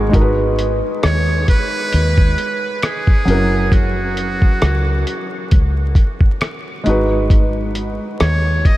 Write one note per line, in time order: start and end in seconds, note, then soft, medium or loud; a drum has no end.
0.00 0.11 G#1 medium
0.00 0.09 G#3 medium
0.00 0.15 B3 loud
0.00 0.11 D#4 medium
0.00 0.13 F#4 medium
0.00 0.15 G#4 medium
0.09 1.36 G#3 medium
0.09 1.36 D#4 medium
0.09 1.37 F#4 medium
0.14 0.80 G#1 medium
0.14 0.22 A#4 medium
0.14 kick loud
0.14 closed hi-hat medium
0.21 1.42 B4 medium
0.59 closed hi-hat medium
1.03 1.45 D#2 medium
1.03 1.46 C#5 loud
1.03 cross-stick loud
1.03 closed hi-hat medium
1.48 2.79 B4 loud
1.48 kick medium
1.48 closed hi-hat medium
1.93 2.35 D#2 loud
1.93 closed hi-hat medium
2.18 kick medium
2.38 closed hi-hat medium
2.82 3.75 G#4 medium
2.82 cross-stick medium
2.82 closed hi-hat medium
3.07 kick medium
3.25 4.39 F#1 medium
3.25 4.71 F#3 medium
3.25 4.71 C#4 medium
3.25 4.72 E4 medium
3.25 closed hi-hat medium
3.30 4.73 A#4 medium
3.72 5.52 F#4 medium
3.72 kick loud
3.72 closed hi-hat medium
4.17 closed hi-hat medium
4.42 kick medium
4.62 5.03 C#2 medium
4.62 cross-stick loud
4.62 closed hi-hat medium
5.07 closed hi-hat medium
5.51 5.93 C#2 medium
5.51 kick medium
5.51 closed hi-hat medium
5.95 kick medium
5.95 closed hi-hat medium
6.20 kick medium
6.41 cross-stick medium
6.41 closed hi-hat medium
6.84 7.97 G#1 medium
6.84 8.29 G#3 medium
6.84 8.30 D#4 medium
6.84 8.31 F#4 medium
6.84 closed hi-hat medium
6.89 8.32 B4 medium
7.30 kick loud
7.30 closed hi-hat medium
7.75 closed hi-hat medium
8.20 8.62 D#2 loud
8.20 8.68 C#5 medium
8.20 cross-stick loud
8.20 closed hi-hat medium
8.65 8.77 D#5 medium
8.65 kick medium
8.65 closed hi-hat medium